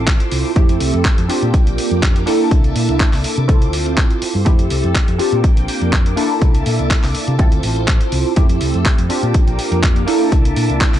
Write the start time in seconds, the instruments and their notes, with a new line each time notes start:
Already playing: fingered electric bass A1, analog polysynth C4 E4 F4 A4, string machine C5 D6
0.07 kick, clap, closed hi-hat
0.20 closed hi-hat
0.32 fingered electric bass C2, open hi-hat
0.56 fingered electric bass F2, analog polysynth A3 C4 E4 G4, string machine A4 E6, kick, closed hi-hat
0.69 closed hi-hat
0.80 fingered electric bass C2, open hi-hat
0.94 fingered electric bass F2, closed hi-hat
1.05 kick, clap, closed hi-hat
1.18 fingered electric bass F2, closed hi-hat
1.29 string machine A#3 G5 D6, analog polysynth C4 D4 F4 G4, open hi-hat
1.43 fingered electric bass A#2, closed hi-hat
1.54 muted fingered electric bass stroke, kick, closed hi-hat
1.67 fingered electric bass A#1, closed hi-hat
1.78 open hi-hat
1.91 fingered electric bass F2, closed hi-hat
2.03 kick, clap, closed hi-hat
2.16 closed hi-hat
2.26 analog polysynth A#3 D4 E4 A4, string machine E5 A5, open hi-hat
2.51 fingered electric bass C2, kick, closed hi-hat
2.64 closed hi-hat
2.76 fingered electric bass A#2, open hi-hat
2.89 fingered electric bass C2, closed hi-hat
3.00 kick, clap, closed hi-hat
3.13 fingered electric bass C2, clap, open hi-hat
3.24 muted fingered electric bass stroke, open hi-hat
3.37 fingered electric bass C3, closed hi-hat
3.48 analog polysynth C4 E4 F4 A4, string machine C5, kick, closed hi-hat
3.62 fingered electric bass D2, closed hi-hat
3.73 open hi-hat
3.86 closed hi-hat
3.97 kick, clap, closed hi-hat
4.10 closed hi-hat
4.22 muted fingered electric bass stroke, open hi-hat
4.35 fingered electric bass G2
4.45 analog polysynth A3 C4 E4 G4, string machine A4 E6, kick, closed hi-hat
4.59 closed hi-hat
4.70 fingered electric bass C2, open hi-hat
4.84 fingered electric bass F2, closed hi-hat
4.95 kick, clap, closed hi-hat
5.08 fingered electric bass F2, closed hi-hat
5.18 string machine A#3 G5 D6, analog polysynth C4 D4 F4 G4, open hi-hat
5.32 fingered electric bass A#2, closed hi-hat
5.44 muted fingered electric bass stroke, kick, closed hi-hat
5.57 fingered electric bass A#1, closed hi-hat
5.68 open hi-hat
5.82 fingered electric bass F2, closed hi-hat
5.93 kick, clap, closed hi-hat
6.06 closed hi-hat
6.16 analog polysynth A#3 D4 E4 A4, string machine E5 A5, open hi-hat
6.41 fingered electric bass C2, kick, closed hi-hat
6.55 closed hi-hat
6.66 fingered electric bass A#2, open hi-hat
6.79 fingered electric bass C2, closed hi-hat
6.90 kick, clap, closed hi-hat
7.03 fingered electric bass C2, clap, open hi-hat
7.15 open hi-hat
7.28 fingered electric bass C3, closed hi-hat
7.39 fingered electric bass D2, analog polysynth C4 E4 F4 A4, string machine C5, kick, closed hi-hat
7.52 closed hi-hat
7.63 fingered electric bass A1, open hi-hat
7.76 closed hi-hat
7.88 kick, clap, closed hi-hat
8.01 closed hi-hat
8.12 fingered electric bass C2, open hi-hat
8.36 fingered electric bass F2, analog polysynth A3 C4 E4 G4, string machine A4 E6, kick, closed hi-hat
8.49 closed hi-hat
8.61 fingered electric bass C2, open hi-hat
8.74 fingered electric bass F2, closed hi-hat
8.85 kick, clap, closed hi-hat
8.98 fingered electric bass F2, closed hi-hat
9.09 string machine A#3 G5 D6, analog polysynth C4 D4 F4 G4, open hi-hat
9.23 fingered electric bass A#2, closed hi-hat
9.34 kick, closed hi-hat
9.47 fingered electric bass A#1, closed hi-hat
9.59 open hi-hat
9.72 fingered electric bass F2, closed hi-hat
9.83 kick, clap, closed hi-hat
9.96 closed hi-hat
10.06 analog polysynth A#3 D4 E4 A4, string machine E5 A5, open hi-hat
10.32 fingered electric bass C2, kick, closed hi-hat
10.45 closed hi-hat
10.56 fingered electric bass A#2, open hi-hat
10.70 fingered electric bass C2, closed hi-hat
10.81 kick, clap, closed hi-hat
10.94 fingered electric bass C2, clap, open hi-hat